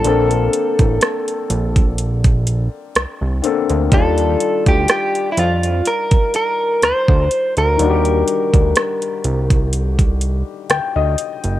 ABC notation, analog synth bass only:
X:1
M:4/4
L:1/16
Q:"Swing 16ths" 1/4=62
K:Eblyd
V:1 name="Analog synth bass" clef=bass
B,,,2 z A,,, z2 B,,,4- B,,, z C,, C,, z D,, | E,,2 z D,, z2 F,,2 z4 D,, D,, z D,, | E,,2 z D,, z2 C,,4- C,, z D,, D,, z ^F,,, |]